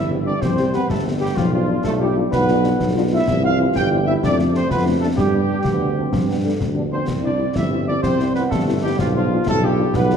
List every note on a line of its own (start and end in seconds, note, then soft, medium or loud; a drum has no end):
0.00 0.34 G1 medium
0.00 1.33 E3 soft
0.00 1.34 G3 medium
0.00 0.25 E4 medium
0.10 0.16 G3 medium
0.10 0.16 C4 soft
0.10 0.16 G4 soft
0.26 0.32 G3 soft
0.26 0.32 C4 soft
0.26 0.33 D4 medium
0.26 0.32 G4 soft
0.26 0.41 D5 medium
0.41 0.82 C2 medium
0.41 0.72 C4 medium
0.41 0.73 C5 medium
0.41 concert bass drum medium
0.41 snare medium
0.57 0.63 G3 medium
0.57 0.64 C4 medium
0.57 0.63 G4 soft
0.57 snare soft
0.73 0.79 G3 medium
0.73 0.89 B3 medium
0.73 0.79 C4 soft
0.73 0.79 G4 soft
0.73 0.89 B4 medium
0.73 snare soft
0.89 1.29 G1 medium
0.89 1.04 A3 medium
0.89 1.03 A4 medium
0.89 concert bass drum medium
0.89 snare medium
1.04 1.10 G3 soft
1.04 1.10 C4 medium
1.04 1.10 G4 soft
1.19 1.26 G3 soft
1.19 1.36 G3 medium
1.19 1.26 C4 soft
1.19 1.26 G4 soft
1.19 1.35 G4 medium
1.36 1.77 B1 medium
1.36 3.28 F3 medium
1.36 1.46 F3 medium
1.36 3.24 G3 medium
1.36 1.51 F4 medium
1.36 concert bass drum medium
1.36 snare medium
1.52 1.68 F3 medium
1.52 1.58 G3 medium
1.52 1.58 D4 medium
1.52 1.82 F4 medium
1.52 1.58 F4 medium
1.67 1.73 G3 medium
1.67 1.73 D4 soft
1.67 1.74 F4 medium
1.84 2.25 B1 medium
1.84 2.00 A3 medium
1.84 1.91 A4 medium
1.84 concert bass drum medium
1.84 snare medium
2.00 2.06 G3 medium
2.00 2.31 G3 medium
2.00 2.06 D4 medium
2.00 2.06 F4 medium
2.00 2.15 G4 medium
2.15 2.21 G3 medium
2.15 2.22 D4 medium
2.15 2.21 F4 medium
2.32 2.72 B1 medium
2.32 2.92 B3 medium
2.32 2.91 B4 medium
2.32 concert bass drum medium
2.32 snare medium
2.48 2.54 G3 medium
2.48 2.54 D4 medium
2.48 2.54 F4 medium
2.48 snare soft
2.63 2.69 G3 medium
2.63 2.69 D4 medium
2.63 2.69 F4 medium
2.63 snare medium
2.80 3.20 B1 medium
2.80 concert bass drum medium
2.80 snare medium
2.95 3.01 G3 medium
2.95 3.01 D4 medium
2.95 3.01 F4 medium
3.11 3.17 G3 medium
3.11 3.17 D4 medium
3.11 3.26 E4 medium
3.11 3.17 F4 medium
3.11 3.42 E5 medium
3.27 3.68 C2 medium
3.27 4.19 E3 medium
3.27 4.19 G3 medium
3.27 concert bass drum medium
3.27 snare medium
3.27 crash soft
3.43 3.49 G3 medium
3.43 3.49 C4 medium
3.43 3.49 E4 medium
3.43 3.73 F4 medium
3.43 3.58 F5 medium
3.58 3.64 G3 medium
3.58 3.64 C4 medium
3.58 3.64 E4 medium
3.75 4.15 G1 medium
3.75 4.06 G4 medium
3.75 3.89 G5 loud
3.75 concert bass drum medium
3.75 snare medium
3.90 3.96 G3 medium
3.90 3.97 C4 medium
3.90 3.97 E4 medium
4.05 4.11 G3 medium
4.05 4.11 C4 medium
4.05 4.11 E4 medium
4.05 4.22 E4 medium
4.05 4.14 E5 medium
4.23 4.63 F2 medium
4.23 5.18 F3 medium
4.23 5.18 A3 medium
4.23 4.37 D4 medium
4.23 4.38 D5 medium
4.23 concert bass drum medium
4.23 snare medium
4.37 4.43 A3 medium
4.37 4.43 D4 medium
4.37 snare soft
4.52 4.59 A3 medium
4.52 4.62 C4 medium
4.52 4.59 D4 medium
4.52 4.70 C5 medium
4.52 snare medium
4.69 5.10 F2 medium
4.69 4.86 B3 medium
4.69 4.84 B4 medium
4.69 concert bass drum medium
4.69 snare medium
4.85 4.91 A3 medium
4.85 4.91 D4 medium
5.00 5.07 A3 soft
5.00 5.10 A3 medium
5.00 5.07 D4 medium
5.00 5.07 A4 medium
5.17 5.57 G2 medium
5.17 6.57 G3 medium
5.17 5.59 G3 medium
5.17 5.59 B3 medium
5.17 6.56 G4 medium
5.17 concert bass drum medium
5.17 snare medium
5.33 5.39 G3 medium
5.33 5.39 B3 medium
5.33 5.39 D4 medium
5.50 5.55 G3 soft
5.50 5.56 B3 soft
5.50 5.55 D4 medium
5.64 6.05 D2 medium
5.64 5.94 B3 medium
5.64 concert bass drum medium
5.64 snare medium
5.80 5.86 G3 medium
5.80 5.86 B3 soft
5.80 5.86 D4 soft
5.96 6.02 G3 soft
5.96 6.02 B3 soft
5.96 6.29 C4 medium
5.96 6.02 D4 soft
6.12 6.52 G2 medium
6.12 concert bass drum medium
6.12 snare medium
6.28 6.34 G3 soft
6.28 6.34 B3 soft
6.28 6.36 B3 medium
6.28 6.34 D4 soft
6.44 6.50 G3 soft
6.44 6.58 A3 medium
6.44 6.50 B3 soft
6.44 6.50 D4 soft
6.60 7.00 D2 medium
6.60 concert bass drum medium
6.60 snare medium
6.74 6.81 G3 soft
6.74 6.82 G3 soft
6.74 6.80 B3 soft
6.74 6.80 D4 soft
6.90 7.06 F3 medium
6.90 6.96 G3 soft
6.90 6.96 B3 soft
6.90 7.07 C4 medium
6.90 6.96 D4 soft
6.90 7.06 C5 medium
7.06 7.48 C2 medium
7.06 8.94 G3 medium
7.06 8.94 C4 soft
7.06 concert bass drum medium
7.06 snare medium
7.06 crash soft
7.22 7.28 G3 soft
7.22 7.29 C4 soft
7.22 7.38 D4 medium
7.22 7.29 E4 soft
7.22 7.54 D5 medium
7.38 7.44 G3 soft
7.38 7.44 C4 soft
7.38 7.44 E4 soft
7.56 7.95 G1 medium
7.56 7.70 E4 medium
7.56 7.86 E5 medium
7.56 concert bass drum medium
7.56 snare medium
7.70 7.76 G3 medium
7.70 7.77 C4 medium
7.70 7.77 E4 soft
7.87 7.93 G3 soft
7.87 7.93 C4 soft
7.87 7.95 D4 medium
7.87 7.93 E4 soft
7.87 8.02 D5 medium
8.02 8.43 C2 medium
8.02 8.19 C4 medium
8.02 8.32 C5 medium
8.02 concert bass drum medium
8.02 snare medium
8.19 8.25 G3 medium
8.19 8.25 C4 soft
8.19 8.25 E4 soft
8.19 snare soft
8.34 8.41 G3 medium
8.34 8.53 B3 medium
8.34 8.41 C4 medium
8.34 8.41 E4 medium
8.34 8.42 B4 medium
8.34 snare soft
8.49 8.91 G1 medium
8.49 8.86 A3 medium
8.49 8.64 A4 medium
8.49 concert bass drum medium
8.49 snare medium
8.67 8.73 G3 medium
8.67 8.73 C4 medium
8.67 8.73 E4 medium
8.82 8.89 G3 medium
8.82 9.02 G3 medium
8.82 8.89 C4 medium
8.82 8.89 E4 medium
8.82 8.97 G4 medium
8.99 9.39 B1 medium
8.99 9.15 F3 medium
8.99 10.17 G3 medium
8.99 9.06 F4 medium
8.99 10.17 F4 medium
8.99 concert bass drum medium
8.99 snare medium
9.14 9.44 F3 medium
9.14 9.20 G3 medium
9.14 9.20 D4 medium
9.14 9.20 F4 medium
9.14 9.45 F4 medium
9.30 9.36 G3 medium
9.30 9.36 D4 medium
9.30 9.35 F4 medium
9.46 9.86 B1 medium
9.46 9.54 A3 medium
9.46 9.62 A4 loud
9.46 concert bass drum medium
9.46 snare medium
9.62 9.68 G3 medium
9.62 9.93 G3 medium
9.62 9.68 D4 medium
9.62 9.68 F4 medium
9.62 9.95 G4 medium
9.78 9.84 G3 medium
9.78 9.84 D4 medium
9.78 9.84 F4 medium
9.94 10.17 B1 medium
9.94 10.17 B3 medium
9.94 10.17 B4 loud
9.94 concert bass drum medium
9.94 snare medium
10.10 10.16 G3 medium
10.10 10.17 D4 medium
10.10 10.16 F4 medium
10.10 snare soft